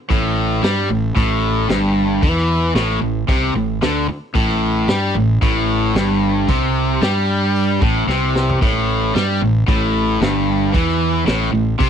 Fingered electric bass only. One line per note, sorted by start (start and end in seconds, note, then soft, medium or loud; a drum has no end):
0.11 0.60 A1 medium
0.63 0.88 G2 medium
0.90 1.14 A1 medium
1.16 1.66 A1 medium
1.70 2.19 G1 medium
2.22 2.72 E2 medium
2.75 3.00 A1 medium
3.03 3.27 A1 medium
3.29 3.54 C2 medium
3.55 3.80 A1 medium
3.82 4.07 D2 medium
4.08 muted fingered electric bass stroke soft
4.35 4.85 A1 medium
4.88 5.13 G2 medium
5.15 5.40 A1 medium
5.42 5.92 A1 medium
5.95 6.45 G1 medium
6.49 6.98 C2 medium
7.02 7.78 G2 medium
7.82 8.06 A1 medium
8.08 8.58 C2 medium
8.62 9.11 A1 medium
9.15 9.40 G2 medium
9.42 9.66 A1 medium
9.68 10.17 A1 medium
10.21 10.71 G1 medium
10.75 11.24 E2 medium
11.28 11.52 A1 loud
11.54 11.79 A1 medium
11.80 11.90 C2 medium